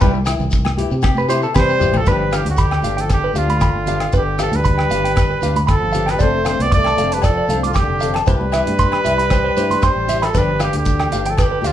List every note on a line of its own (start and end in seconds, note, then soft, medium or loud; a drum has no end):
0.01 0.34 C2 loud
0.01 0.17 G3 medium
0.01 0.17 B3 medium
0.01 0.18 E4 medium
0.01 0.18 G4 medium
0.01 0.14 B4 loud
0.01 kick medium
0.01 shekere medium
0.14 muted clean electric guitar stroke medium
0.14 shekere soft
0.26 0.44 B3 soft
0.26 0.43 E4 medium
0.26 cross-stick medium
0.26 closed hi-hat medium
0.26 low agogo medium
0.26 shekere medium
0.39 0.83 C2 medium
0.39 low conga medium
0.39 shekere soft
0.51 kick medium
0.51 shekere loud
0.65 cross-stick medium
0.65 high conga medium
0.65 low agogo medium
0.65 shekere soft
0.77 0.95 B3 soft
0.77 0.94 E4 medium
0.77 0.94 G4 medium
0.77 closed hi-hat medium
0.77 high conga medium
0.91 1.45 C3 loud
0.91 shekere soft
1.02 1.17 G4 medium
1.02 kick loud
1.02 cross-stick medium
1.02 low agogo medium
1.02 shekere medium
1.15 1.29 B4 medium
1.15 high conga medium
1.15 shekere soft
1.29 1.47 B3 soft
1.29 1.46 E4 medium
1.29 1.45 G4 medium
1.29 1.43 C5 loud
1.29 closed hi-hat soft
1.29 shekere medium
1.43 1.55 A4 medium
1.43 shekere soft
1.54 1.77 C3 loud
1.54 2.00 G3 medium
1.54 1.71 B4 medium
1.54 1.99 C5 medium
1.54 kick medium
1.54 snare soft
1.54 low agogo medium
1.54 shekere loud
1.69 shekere soft
1.80 2.02 A1 medium
1.80 1.98 B3 soft
1.80 1.97 E4 soft
1.80 1.97 G4 medium
1.80 mid tom medium
1.80 shekere medium
1.93 floor tom medium
1.93 high conga medium
1.93 low agogo medium
1.93 shekere soft
1.97 2.11 F3 medium
1.97 2.10 A4 medium
2.06 2.40 G1 medium
2.06 2.23 F3 medium
2.06 2.35 G3 medium
2.06 2.23 B3 medium
2.06 2.23 D4 medium
2.06 2.23 G4 medium
2.06 2.15 B4 medium
2.06 2.38 B4 medium
2.06 kick medium
2.06 closed hi-hat soft
2.06 shekere medium
2.32 2.47 E3 medium
2.32 2.50 B3 soft
2.32 2.50 D4 soft
2.32 2.49 G4 soft
2.32 2.48 G4 medium
2.32 2.40 F5 medium
2.32 cross-stick medium
2.32 closed hi-hat soft
2.32 low agogo medium
2.32 shekere medium
2.45 2.78 D2 medium
2.45 closed hi-hat soft
2.45 high conga medium
2.49 3.02 D3 medium
2.49 3.02 G4 medium
2.57 2.66 B5 medium
2.57 kick medium
2.57 closed hi-hat soft
2.57 shekere medium
2.71 2.78 G5 medium
2.71 cross-stick soft
2.71 low agogo medium
2.82 3.27 G1 medium
2.82 3.01 D4 soft
2.82 3.00 G4 soft
2.82 2.92 F5 medium
2.82 closed hi-hat soft
2.82 high conga medium
2.82 low conga medium
2.82 shekere medium
2.86 3.01 B3 soft
2.97 3.11 F3 medium
2.97 3.12 A4 medium
2.97 3.04 G5 medium
2.97 closed hi-hat soft
3.10 3.40 D3 medium
3.10 3.40 G4 medium
3.10 muted clean electric guitar stroke medium
3.10 kick medium
3.10 cross-stick medium
3.10 closed hi-hat soft
3.10 low agogo medium
3.10 shekere medium
3.24 3.31 B4 medium
3.33 3.68 D2 medium
3.33 3.52 G4 soft
3.33 3.43 F5 medium
3.33 closed hi-hat soft
3.33 high conga medium
3.33 shekere medium
3.37 4.15 D3 medium
3.37 3.54 B3 soft
3.37 3.53 D4 soft
3.37 4.15 F4 medium
3.48 3.57 B5 medium
3.48 closed hi-hat soft
3.48 high conga medium
3.61 3.69 B5 medium
3.61 kick medium
3.61 cross-stick medium
3.61 closed hi-hat soft
3.61 low agogo medium
3.61 shekere medium
3.73 4.06 G1 medium
3.86 4.05 B3 soft
3.86 4.04 D4 soft
3.86 4.04 G4 soft
3.86 3.96 F5 medium
3.86 closed hi-hat soft
3.86 low conga medium
3.86 shekere medium
4.00 4.08 F5 medium
4.00 cross-stick medium
4.00 closed hi-hat soft
4.00 low agogo medium
4.13 4.47 G1 medium
4.13 4.39 D3 medium
4.13 4.21 B4 medium
4.13 kick medium
4.13 closed hi-hat soft
4.13 shekere medium
4.17 4.40 G4 medium
4.39 4.57 B3 soft
4.39 4.56 D4 soft
4.39 4.56 G4 soft
4.39 4.57 A4 medium
4.39 4.47 F5 medium
4.39 cross-stick medium
4.39 closed hi-hat soft
4.39 low agogo medium
4.39 shekere medium
4.44 4.58 F3 medium
4.52 4.84 D2 medium
4.52 closed hi-hat soft
4.52 high conga medium
4.56 5.58 G3 medium
4.56 5.58 B4 medium
4.64 4.72 B5 medium
4.64 kick medium
4.64 closed hi-hat soft
4.64 shekere medium
4.78 4.85 G5 medium
4.78 cross-stick medium
4.78 low agogo soft
4.90 5.34 G1 medium
4.90 5.08 B3 soft
4.90 5.08 D4 soft
4.90 5.08 G4 soft
4.90 4.98 F5 medium
4.90 closed hi-hat soft
4.90 high conga medium
4.90 low conga medium
4.90 shekere medium
5.04 5.11 G5 medium
5.04 closed hi-hat soft
5.16 5.25 B4 medium
5.16 kick medium
5.16 cross-stick medium
5.16 closed hi-hat soft
5.16 low agogo medium
5.16 shekere medium
5.31 5.37 B4 medium
5.42 5.75 D2 medium
5.42 5.60 B3 soft
5.42 5.59 D4 medium
5.42 5.59 G4 soft
5.42 5.50 F5 medium
5.42 closed hi-hat soft
5.42 high conga medium
5.42 shekere medium
5.55 5.63 B5 medium
5.55 closed hi-hat soft
5.55 high conga medium
5.67 6.12 A4 medium
5.67 5.75 B5 medium
5.67 kick medium
5.67 cross-stick medium
5.67 closed hi-hat soft
5.67 low agogo medium
5.67 shekere medium
5.72 6.15 F3 medium
5.82 6.14 G1 medium
5.93 6.11 B3 soft
5.93 6.12 D4 soft
5.93 6.11 G4 soft
5.93 6.01 F5 medium
5.93 closed hi-hat soft
5.93 low conga medium
5.93 shekere medium
6.06 6.14 G5 medium
6.06 cross-stick medium
6.06 closed hi-hat soft
6.06 low agogo medium
6.10 6.25 G3 medium
6.10 6.23 B4 medium
6.19 6.54 F1 medium
6.19 6.37 C4 medium
6.19 6.37 D4 medium
6.19 6.38 A4 medium
6.19 6.47 C5 medium
6.19 6.27 D5 medium
6.19 muted nylon-string guitar stroke medium
6.19 kick medium
6.19 closed hi-hat soft
6.19 shekere medium
6.23 6.48 A3 medium
6.45 6.63 C4 soft
6.45 6.63 D4 soft
6.45 6.62 A4 soft
6.45 6.63 C5 medium
6.45 6.53 F5 medium
6.45 cross-stick medium
6.45 closed hi-hat soft
6.45 low agogo medium
6.45 shekere medium
6.50 6.64 A3 medium
6.59 6.92 C2 medium
6.59 6.74 B3 medium
6.59 6.73 D5 medium
6.59 closed hi-hat soft
6.59 high conga medium
6.72 7.15 D5 loud
6.72 6.79 D6 medium
6.72 kick medium
6.72 closed hi-hat soft
6.72 shekere medium
6.76 7.17 A3 medium
6.84 6.93 A5 medium
6.84 cross-stick medium
6.84 low agogo medium
6.97 7.41 F1 medium
6.97 7.16 C4 soft
6.97 7.15 D4 soft
6.97 7.14 A4 soft
6.97 7.06 F5 medium
6.97 closed hi-hat soft
6.97 high conga medium
6.97 low conga medium
6.97 shekere medium
7.12 7.24 B4 medium
7.12 7.18 A5 medium
7.12 closed hi-hat medium
7.16 7.25 G3 medium
7.22 7.61 A4 medium
7.22 7.31 D5 medium
7.22 kick medium
7.22 cross-stick medium
7.22 closed hi-hat soft
7.22 low agogo medium
7.22 shekere medium
7.26 7.62 F3 medium
7.38 7.44 D5 medium
7.48 7.82 C2 medium
7.48 7.67 D4 soft
7.48 7.66 A4 medium
7.48 7.57 F5 medium
7.48 closed hi-hat soft
7.48 high conga medium
7.48 shekere medium
7.53 7.68 C4 soft
7.62 7.76 D3 medium
7.62 7.70 D6 medium
7.62 closed hi-hat soft
7.62 high conga medium
7.66 7.77 F4 medium
7.74 7.83 D6 medium
7.74 kick medium
7.74 cross-stick medium
7.74 closed hi-hat soft
7.74 low agogo medium
7.74 shekere medium
7.79 8.14 D3 medium
7.79 8.14 G4 medium
7.88 8.20 F1 medium
8.00 8.19 C4 soft
8.00 8.19 D4 soft
8.00 8.18 A4 soft
8.00 8.09 F5 medium
8.00 closed hi-hat soft
8.00 low conga medium
8.00 shekere medium
8.14 8.22 A5 medium
8.14 cross-stick medium
8.14 closed hi-hat soft
8.14 low agogo medium
8.26 8.61 C2 medium
8.26 8.43 B3 medium
8.26 8.43 E4 medium
8.26 8.44 G4 medium
8.26 9.86 B4 medium
8.26 8.35 C5 medium
8.26 kick medium
8.26 closed hi-hat soft
8.26 shekere medium
8.31 9.87 G3 medium
8.41 high conga medium
8.52 8.70 E4 soft
8.52 8.69 G4 soft
8.52 8.61 E5 medium
8.52 cross-stick medium
8.52 closed hi-hat soft
8.52 low agogo medium
8.52 shekere medium
8.66 8.98 G2 medium
8.66 closed hi-hat soft
8.66 high conga medium
8.79 8.87 C6 medium
8.79 kick medium
8.79 closed hi-hat soft
8.79 shekere medium
8.92 9.00 B5 medium
8.92 cross-stick medium
8.92 low agogo medium
9.04 9.49 C2 medium
9.04 9.21 E4 soft
9.04 9.21 G4 soft
9.04 9.12 E5 medium
9.04 closed hi-hat soft
9.04 high conga medium
9.04 low conga soft
9.04 shekere medium
9.18 9.25 B5 medium
9.18 closed hi-hat soft
9.30 9.39 C5 medium
9.30 kick medium
9.30 cross-stick medium
9.30 closed hi-hat soft
9.30 low agogo medium
9.30 shekere medium
9.44 9.51 C5 medium
9.57 9.90 G2 medium
9.57 9.74 E4 soft
9.57 9.73 G4 medium
9.57 9.65 C5 medium
9.57 closed hi-hat soft
9.57 high conga medium
9.57 shekere medium
9.70 9.77 C6 medium
9.70 closed hi-hat soft
9.70 high conga medium
9.70 low conga soft
9.82 10.26 C5 medium
9.82 9.91 C6 medium
9.82 kick medium
9.82 cross-stick medium
9.82 closed hi-hat soft
9.82 low agogo medium
9.82 shekere medium
9.87 10.28 G3 medium
9.96 10.28 A1 medium
10.07 10.25 E4 soft
10.07 10.24 G4 soft
10.07 10.16 E5 medium
10.07 closed hi-hat soft
10.07 low conga medium
10.07 shekere medium
10.22 10.40 A4 medium
10.22 10.29 B5 medium
10.22 cross-stick medium
10.22 closed hi-hat soft
10.22 low agogo medium
10.26 10.38 F3 medium
10.34 10.68 G1 medium
10.34 10.50 F3 medium
10.34 10.62 G3 medium
10.34 10.51 B3 medium
10.34 10.51 D4 medium
10.34 10.51 G4 medium
10.34 10.42 B4 medium
10.34 kick medium
10.34 closed hi-hat soft
10.34 shekere loud
10.38 10.62 B4 medium
10.60 10.74 E3 medium
10.60 10.78 B3 soft
10.60 10.77 D4 soft
10.60 10.76 G4 soft
10.60 10.68 F5 medium
10.60 cross-stick medium
10.60 closed hi-hat soft
10.60 low agogo medium
10.60 shekere medium
10.64 10.75 G4 medium
10.73 11.06 D2 medium
10.73 11.28 D3 medium
10.73 closed hi-hat soft
10.73 high conga medium
10.78 11.32 G4 medium
10.85 kick medium
10.85 closed hi-hat soft
10.85 shekere medium
11.00 11.07 G5 medium
11.00 cross-stick medium
11.00 low agogo medium
11.11 11.56 G1 medium
11.11 11.29 D4 soft
11.11 11.28 G4 soft
11.11 11.20 F5 medium
11.11 closed hi-hat soft
11.11 high conga soft
11.11 low conga soft
11.11 shekere medium
11.15 11.30 B3 soft
11.26 11.41 F3 medium
11.26 11.33 G5 medium
11.26 closed hi-hat soft
11.30 11.45 A4 medium
11.37 11.68 D3 medium
11.37 11.46 B4 medium
11.37 kick medium
11.37 cross-stick medium
11.37 closed hi-hat soft
11.37 low agogo medium
11.37 shekere medium
11.43 11.68 G4 medium
11.51 11.58 B4 medium
11.62 11.73 D2 medium
11.62 11.73 D4 soft
11.62 11.73 G4 medium
11.62 11.72 F5 medium
11.62 closed hi-hat soft
11.62 high conga medium
11.62 shekere medium
11.67 11.73 D3 medium
11.67 11.73 F4 medium